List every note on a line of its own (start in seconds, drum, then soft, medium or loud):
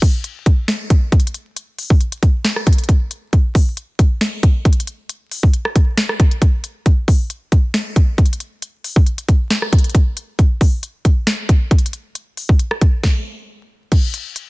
0.02 kick medium
0.02 open hi-hat loud
0.24 closed hi-hat medium
0.46 kick loud
0.46 closed hi-hat medium
0.68 snare loud
0.68 closed hi-hat medium
0.90 kick loud
0.90 closed hi-hat medium
1.12 kick loud
1.12 closed hi-hat soft
1.20 closed hi-hat medium
1.27 closed hi-hat medium
1.34 closed hi-hat medium
1.56 closed hi-hat medium
1.78 open hi-hat medium
1.90 kick medium
2.01 closed hi-hat soft
2.12 closed hi-hat medium
2.23 kick loud
2.23 closed hi-hat medium
2.45 snare loud
2.45 closed hi-hat medium
2.56 cross-stick medium
2.67 kick loud
2.67 closed hi-hat medium
2.73 closed hi-hat medium
2.78 closed hi-hat medium
2.84 closed hi-hat soft
2.89 kick loud
2.89 closed hi-hat medium
3.11 closed hi-hat medium
3.33 kick loud
3.33 closed hi-hat medium
3.55 kick medium
3.55 open hi-hat loud
3.77 closed hi-hat medium
3.99 kick loud
3.99 closed hi-hat medium
4.21 snare loud
4.21 closed hi-hat medium
4.43 kick loud
4.43 closed hi-hat medium
4.65 kick loud
4.65 closed hi-hat soft
4.73 closed hi-hat medium
4.80 closed hi-hat medium
4.87 closed hi-hat medium
5.09 closed hi-hat medium
5.31 open hi-hat medium
5.43 kick medium
5.54 closed hi-hat medium
5.65 cross-stick medium
5.76 kick loud
5.76 closed hi-hat medium
5.98 snare loud
5.98 closed hi-hat medium
6.09 cross-stick medium
6.20 kick loud
6.20 closed hi-hat medium
6.31 closed hi-hat soft
6.42 kick loud
6.42 closed hi-hat medium
6.64 closed hi-hat medium
6.86 kick loud
6.86 closed hi-hat medium
7.08 kick medium
7.08 open hi-hat loud
7.30 closed hi-hat medium
7.52 kick loud
7.52 closed hi-hat medium
7.74 snare loud
7.74 closed hi-hat medium
7.96 kick loud
7.96 closed hi-hat medium
8.18 kick loud
8.18 closed hi-hat soft
8.26 closed hi-hat medium
8.33 closed hi-hat medium
8.40 closed hi-hat medium
8.62 closed hi-hat medium
8.84 open hi-hat loud
8.96 kick medium
9.06 closed hi-hat soft
9.18 closed hi-hat medium
9.29 kick loud
9.29 closed hi-hat medium
9.50 snare loud
9.50 closed hi-hat medium
9.62 cross-stick medium
9.73 kick loud
9.73 closed hi-hat medium
9.78 closed hi-hat medium
9.84 closed hi-hat medium
9.90 closed hi-hat soft
9.95 kick loud
9.95 closed hi-hat medium
10.17 closed hi-hat medium
10.39 kick loud
10.39 closed hi-hat medium
10.61 kick medium
10.61 open hi-hat loud
10.83 closed hi-hat medium
11.05 kick loud
11.05 closed hi-hat medium
11.27 snare loud
11.27 closed hi-hat medium
11.49 kick loud
11.49 closed hi-hat medium
11.71 kick loud
11.71 closed hi-hat soft
11.79 closed hi-hat medium
11.86 closed hi-hat medium
11.93 closed hi-hat medium
12.15 closed hi-hat medium
12.37 open hi-hat loud
12.49 kick medium
12.59 closed hi-hat medium
12.71 cross-stick medium
12.81 kick loud
12.81 closed hi-hat medium
13.04 kick loud
13.04 snare medium
13.92 kick loud
13.92 closed hi-hat medium
13.92 crash loud
14.14 closed hi-hat loud
14.36 closed hi-hat medium